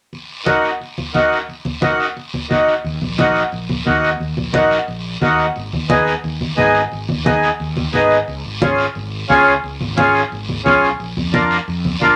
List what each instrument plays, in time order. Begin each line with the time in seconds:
0.13 high conga, long guiro
0.46 accordion A#3 D#4 F#4, high conga, short guiro
0.64 short guiro
0.81 high conga, long guiro
0.98 high conga
1.14 accordion A#3 D#4 F#4, high conga, short guiro
1.32 short guiro
1.49 high conga, long guiro
1.65 high conga
1.82 accordion A#3 D#4 F#4, high conga, short guiro
2.00 short guiro
2.17 high conga, long guiro
2.34 high conga
2.49 accordion A#3 D#4 F#4, high conga, short guiro
2.68 short guiro
2.84 fretless electric bass D#2, high conga, long guiro
3.02 fretless electric bass A#1, high conga
3.18 accordion A#3 D#4 F#4, high conga, short guiro
3.35 short guiro
3.52 fretless electric bass A#1, high conga, long guiro
3.69 high conga
3.86 fretless electric bass D#2, accordion A#3 D#4 F#4, high conga, short guiro
4.04 short guiro
4.20 fretless electric bass D#2, high conga, long guiro
4.37 fretless electric bass A#1, high conga
4.53 accordion A#3 D#4 F#4, high conga, short guiro
4.71 short guiro
4.88 fretless electric bass A#1, high conga, long guiro
5.21 fretless electric bass D#2, accordion A#3 D#4 F#4, high conga, short guiro
5.39 short guiro
5.56 fretless electric bass G#1, high conga, long guiro
5.73 fretless electric bass D#2, high conga
5.89 accordion B3 D#4 G#4, high conga, short guiro
6.07 short guiro
6.24 fretless electric bass D#2, high conga, long guiro
6.41 high conga
6.57 fretless electric bass G#1, accordion B3 D#4 G#4, high conga, short guiro
6.74 short guiro
6.92 fretless electric bass G#1, high conga, long guiro
7.09 fretless electric bass D#2, high conga
7.25 accordion B3 D#4 G#4, high conga, short guiro
7.43 short guiro
7.60 fretless electric bass D#2, high conga, long guiro
7.77 high conga
7.93 fretless electric bass G#1, accordion B3 D#4 G#4, high conga, short guiro
8.10 short guiro
8.28 fretless electric bass C#2, high conga, long guiro
8.45 fretless electric bass G#1
8.61 accordion C#4 F4 G#4, high conga, short guiro
8.78 short guiro
8.95 fretless electric bass G#1, high conga, long guiro
9.29 fretless electric bass C#2, accordion C#4 F4 G#4, high conga, short guiro
9.47 short guiro
9.64 fretless electric bass C#2, high conga, long guiro
9.81 fretless electric bass G#1, high conga
9.97 accordion C#4 F4 G#4, high conga, short guiro
10.15 short guiro
10.32 fretless electric bass G#1, high conga, long guiro
10.49 high conga
10.65 fretless electric bass B1, accordion C#4 F4 G#4, high conga, short guiro
10.83 short guiro
10.99 fretless electric bass A#1, high conga, long guiro
11.17 fretless electric bass F2, high conga
11.33 accordion D4 F4 A#4, high conga, short guiro
11.51 short guiro
11.68 fretless electric bass F2, high conga, long guiro
11.85 high conga
12.01 fretless electric bass A#1, accordion D4 F4 A#4, high conga, short guiro